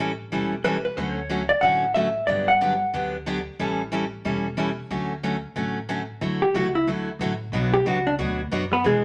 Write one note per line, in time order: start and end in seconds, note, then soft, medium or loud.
0.00 0.19 A1 medium
0.00 0.10 E3 medium
0.00 0.10 G3 medium
0.00 0.11 C#4 medium
0.00 0.11 E4 medium
0.00 0.11 A4 medium
0.32 0.85 E1 medium
0.32 0.53 E3 medium
0.32 0.53 G3 medium
0.32 0.53 C#4 medium
0.32 0.53 E4 medium
0.32 0.54 A4 medium
0.64 0.76 E3 medium
0.64 0.76 G3 medium
0.64 0.76 C#4 medium
0.64 0.76 E4 medium
0.64 0.76 A4 medium
0.64 0.84 B4 medium
0.85 0.97 B4 medium
0.97 1.50 D2 medium
0.97 1.18 D3 medium
0.97 1.19 F#3 medium
0.97 1.19 A3 medium
0.97 1.19 C#4 medium
0.97 1.19 F#4 medium
0.97 1.14 C5 medium
1.14 1.49 C#5 medium
1.29 1.41 D3 medium
1.29 1.41 F#3 medium
1.29 1.42 A3 medium
1.29 1.41 C#4 medium
1.29 1.42 F#4 medium
1.49 1.62 D5 medium
1.61 2.15 A1 medium
1.61 1.84 D3 medium
1.61 1.84 F#3 medium
1.61 1.84 A3 medium
1.61 1.84 C#4 medium
1.61 1.84 F#4 medium
1.61 1.94 F#5 loud
1.94 2.07 D3 medium
1.94 2.07 F#3 medium
1.94 2.07 A3 medium
1.94 2.07 C#4 medium
1.94 2.07 F#4 medium
1.94 2.29 E5 medium
2.27 2.80 G1 medium
2.27 2.49 D3 medium
2.27 2.49 F#3 medium
2.27 2.50 B3 medium
2.27 2.50 D4 medium
2.27 2.50 G4 medium
2.27 2.49 D5 medium
2.48 3.10 F#5 medium
2.61 2.72 D3 medium
2.61 2.72 F#3 medium
2.61 2.73 B3 medium
2.61 2.73 D4 medium
2.61 2.73 G4 medium
2.93 3.46 D2 medium
2.93 3.15 D3 medium
2.93 3.15 F#3 medium
2.93 3.15 B3 medium
2.93 3.15 D4 medium
2.93 3.15 G4 medium
3.26 3.38 D3 medium
3.26 3.38 F#3 medium
3.26 3.38 B3 medium
3.26 3.38 D4 medium
3.26 3.38 G4 medium
3.59 4.12 A1 medium
3.59 3.81 E3 medium
3.59 3.81 G3 medium
3.59 3.81 C#4 medium
3.59 3.81 E4 medium
3.59 3.81 A4 medium
3.92 4.03 E3 medium
3.92 4.04 G3 medium
3.92 4.04 C#4 medium
3.92 4.04 E4 medium
3.92 4.04 A4 medium
4.25 4.78 E1 medium
4.25 4.46 E3 medium
4.25 4.46 G3 medium
4.25 4.46 C#4 medium
4.25 4.46 E4 medium
4.25 4.46 A4 medium
4.57 4.69 E3 medium
4.57 4.69 G3 medium
4.57 4.69 C#4 medium
4.57 4.69 E4 medium
4.57 4.69 A4 medium
4.90 5.43 D2 medium
4.90 5.12 D3 medium
4.90 5.12 F#3 medium
4.90 5.12 A3 medium
4.90 5.12 C#4 medium
4.90 5.12 F#4 medium
5.23 5.35 D3 medium
5.23 5.35 F#3 medium
5.23 5.35 A3 medium
5.23 5.35 C#4 medium
5.23 5.35 F#4 medium
5.56 6.08 A1 medium
5.56 5.77 D3 soft
5.56 5.77 F#3 medium
5.56 5.77 A3 medium
5.56 5.77 C#4 medium
5.56 5.78 F#4 medium
5.89 6.00 D3 medium
5.89 6.00 F#3 medium
5.89 6.00 A3 medium
5.89 6.00 C#4 medium
5.89 6.01 F#4 medium
6.21 6.53 D2 medium
6.21 6.43 D3 medium
6.21 6.43 F#3 medium
6.21 6.43 A3 medium
6.21 6.43 E4 medium
6.21 6.43 F#4 medium
6.42 6.54 G4 medium
6.54 6.86 C#2 medium
6.54 6.66 D3 medium
6.54 6.66 F#3 medium
6.54 6.66 A3 medium
6.54 6.66 E4 medium
6.54 6.66 F#4 medium
6.54 6.75 F#4 medium
6.75 6.87 E4 medium
6.87 7.19 D2 medium
6.87 7.09 D3 medium
6.87 7.09 F#3 medium
6.87 7.09 A3 medium
6.87 7.09 E4 medium
6.87 7.09 F#4 medium
7.19 7.52 A1 medium
7.19 7.32 D3 medium
7.19 7.32 F#3 medium
7.19 7.32 A3 medium
7.19 7.32 E4 medium
7.19 7.32 F#4 medium
7.52 7.84 B1 medium
7.52 7.74 B2 medium
7.52 7.74 F#3 medium
7.52 7.74 B3 medium
7.52 7.74 D4 medium
7.52 7.75 F#4 medium
7.52 7.75 C#5 medium
7.74 7.85 G4 medium
7.85 8.17 C#2 medium
7.85 7.97 B2 medium
7.85 7.97 F#3 medium
7.85 7.97 B3 medium
7.85 7.98 D4 medium
7.85 7.98 F#4 medium
7.85 8.07 F#4 medium
7.85 7.98 C#5 medium
8.07 8.14 D4 loud
8.18 8.50 D2 medium
8.18 8.40 B2 medium
8.18 8.40 F#3 medium
8.18 8.40 B3 medium
8.18 8.40 D4 medium
8.18 8.40 F#4 medium
8.18 8.40 C#5 medium
8.51 8.83 F#2 medium
8.51 8.63 B2 medium
8.51 8.63 F#3 medium
8.51 8.63 B3 medium
8.51 8.63 D4 medium
8.51 8.63 F#4 medium
8.51 8.63 C#5 medium
8.73 8.84 B3 medium
8.73 8.84 B4 medium
8.84 9.04 B2 medium
8.84 9.04 E3 medium
8.84 9.04 G#3 medium
8.84 9.04 B3 medium
8.84 9.04 D4 medium
8.84 9.04 G#4 medium